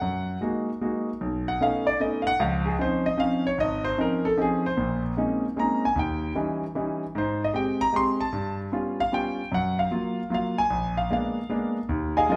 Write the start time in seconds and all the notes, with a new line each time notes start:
Already playing: F#5
0.01 F#2
0.41 G#3 A#3 D#4 F#4
0.81 G#3 A#3 D#4 F#4
1.21 B1
1.48 F#5
1.61 A3 B3 C#4 D#4 F5
1.87 D5
2.00 A3 B3 C#4 D#4 D#5
2.22 F5
2.27 F#5
2.40 C#2 F3 F5
2.66 G#4
2.79 F3 C4 C#4 D#4 C5
3.06 D#5
3.17 F3 C4 C#4 D#4 F5
3.47 C#5
3.58 G#1 D#5
3.85 C5
3.98 F3 C4 C#4 D#4 A#4
4.25 A4
4.37 F3 C4 C#4 D#4
4.42 G#4
4.66 C5
4.77 A#1 A#2
5.17 G#3 A#3 C4 C#4 D#4
5.56 G#3 A#3 C4 C#4 D#4 A#5
5.85 G#5
5.96 D#2 G5
6.35 E3 G3 C#4 D#4
6.75 E3 G3 C#4 D#4
7.15 G#2 C5
7.44 D#5
7.53 G#3 C4 G4 G5
7.81 A#5
7.93 G#3 C4 G4 C6
8.20 A5
8.33 G2
8.72 G3 B3 C#4 F4
9.00 F5
9.12 G3 B3 C#4 F4 G5
9.52 F#2 F#5
9.79 F5
9.91 F#3 A#3 F4
10.30 F#3 A#3 F4
10.34 F5
10.58 G#5
10.70 A#1
10.97 F5
11.10 G#3 A#3 B3 D4 F5
11.50 G#3 A#3 B3 D4
11.89 D#2
12.17 G#4 D#5 F5 G#5
12.29 F#3 G#3 C#4 D#4 F4 G#4 A#4 D#5